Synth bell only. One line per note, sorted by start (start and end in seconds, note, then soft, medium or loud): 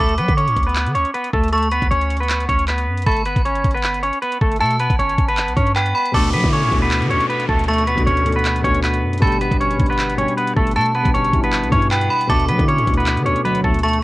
0.00 1.10 D6 loud
1.53 2.64 C#6 loud
3.06 4.18 B5 medium
4.60 5.72 A5 loud
5.76 5.94 G5 medium
5.95 6.13 B5 loud
6.14 7.26 D6 loud
7.68 8.80 C#6 loud
9.22 10.33 B5 medium
10.76 11.87 A5 loud
11.91 12.09 G5 medium
12.10 12.29 B5 loud
12.30 13.41 D6 loud
13.83 14.03 C#6 loud